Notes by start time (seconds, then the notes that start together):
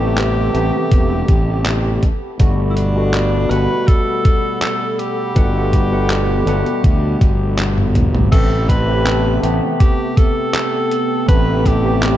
Already playing: A1 G4 A4 A5
0.00 C3 A3 B3 G4
0.18 clap, closed hi-hat
0.53 A1 C3 A3 B3 G4, closed hi-hat
0.91 E1, kick, closed hi-hat
1.28 A1, kick, closed hi-hat
1.66 clap, closed hi-hat
2.03 A4 F#5 B5, kick, closed hi-hat
2.39 G1 B2 G3 A3 F#4, kick, closed hi-hat
2.70 E4
2.76 D4, closed hi-hat
2.96 B2 G3 A3 F#4
3.14 clap, closed hi-hat
3.49 G1 B2 G3 A3 B4 F#5, closed hi-hat
3.87 A4, kick, closed hi-hat
4.25 kick, closed hi-hat
4.62 A4, clap, closed hi-hat
4.99 G4, closed hi-hat
5.35 G1 B2 G3 A3 F#5, kick, closed hi-hat
5.73 kick, closed hi-hat
5.91 B2 G3 A3 F#5
6.10 clap, closed hi-hat
6.46 G1 B2 G3 A3 F#5, closed hi-hat
6.66 closed hi-hat
6.84 D2, kick, closed hi-hat
7.21 G1, kick, closed hi-hat
7.59 clap, closed hi-hat
7.78 high tom
7.95 kick, closed hi-hat, mid tom
8.15 mid tom
8.31 A1 C3 A3 B3 G4 A4 G5 A5, kick, closed hi-hat, crash
8.69 B4, kick, closed hi-hat
8.87 C3 A3 B3 G4
9.07 clap, closed hi-hat
9.42 A1 C3 A3 B3 G4, closed hi-hat
9.80 G4, kick, closed hi-hat
10.17 A4, kick, closed hi-hat
10.54 clap, closed hi-hat
10.91 closed hi-hat
11.27 A1 C3 A3 B3 G4 B4, kick, closed hi-hat
11.66 G4, kick, closed hi-hat
11.85 C3 A3 B3 G4
12.03 clap, closed hi-hat